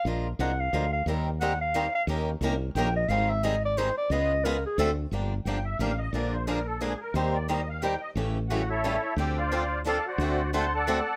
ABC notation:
X:1
M:3/4
L:1/16
Q:"Swing" 1/4=178
K:Eb
V:1 name="Clarinet"
z4 ^f2 =f4 f2 | z4 ^f2 =f4 f2 | z8 g2 e2 | f2 =e2 _e2 d2 c2 d2 |
e4 B2 A2 =A2 z2 | [K:Gm] z12 | z12 | z12 |
z12 | z12 | z12 |]
V:2 name="Accordion"
z12 | z12 | z12 | z12 |
z12 | [K:Gm] z4 g2 =e2 f2 _e2 | d2 c2 B2 A2 _A2 B2 | c2 d2 e2 f2 g2 e2 |
z4 [^F^f]2 [=EA^c=e]6 | [Gg]2 [Fcdf]6 [Adfa]2 [^Fcd^f]2- | [^Fcd^f]4 [cfac']2 [Adfa]6 |]
V:3 name="Steel-string acoustic guitar"
[F,A,DFB]2 z2 [F,A,DFB] z3 [F,A,DFB] z3 | [E,G,CGB]2 z2 [E,G,CGB] z3 [E,G,CGB] z3 | [E,B,_DGB]2 z2 [E,B,DGB] z3 [E,B,DGB] z3 | [E,G,CEA]2 z2 [E,G,CEA] z3 [E,G,CEA] z3 |
[_D,A,_CFA]2 z2 [D,A,CFA] z3 [=D,=A,=C^F=A] z3 | [K:Gm] [D,F,B,DG]2 z2 [D,F,B,DG] z3 [D,F,B,DG] z3 | [D,F,B,D_A]2 z2 [D,F,B,DA] z3 [D,F,B,DA] z3 | [E,G,CGB]2 z2 [E,G,CGB] z3 [E,G,CGB] z3 |
[^C,=E,A,^CG]2 z2 [C,E,A,CG] z3 [C,E,A,CG] z3 | [D,F,CDA]2 z2 [D,F,CDA] z3 [D,F,CDA] z3 | [D,A,C^FA]2 z2 [D,A,CFA] z3 [D,A,CFA] z3 |]
V:4 name="Steel-string acoustic guitar"
z12 | [E,G,B,EGc]2 z2 [E,G,B,EGc] z3 [E,G,B,EGc] z3 | [E,B,_DGB]2 z2 [E,B,DGB] z3 [E,B,DGB] z3 | [E,G,CEA]2 z2 [E,G,CEA] z3 [E,G,CEA] z3 |
[_D,A,_CFA]2 z2 [D,A,CFA] z3 [=D,=A,=C^F=A] z3 | [K:Gm] [D,F,B,DG]2 z2 [D,F,B,DG] z3 [D,F,B,DG] z3 | [F,_A,DFB]2 z2 [F,A,DFB] z3 [F,A,DFB] z3 | [E,G,B,EGc]2 z2 [E,G,B,EGc] z3 [E,G,B,EGc] z3 |
[=E,G,^C=EA]2 z2 [E,G,CEA] z3 [E,G,CEA] z3 | [D,F,CDA]2 z2 [D,F,CDA] z3 [D,F,CDA] z3 | [D,A,C^FA]2 z2 [D,A,CFA] z3 [D,A,CFA] z3 |]
V:5 name="Fretless electric bass" clef=bass
B,,,4 C,,4 D,,4 | E,,12 | E,,4 C,,4 B,,,4 | A,,,12 |
_D,,8 =D,,4 | [K:Gm] G,,,4 G,,,4 A,,,4 | B,,,12 | E,,12 |
A,,,12 | D,,12 | D,,12 |]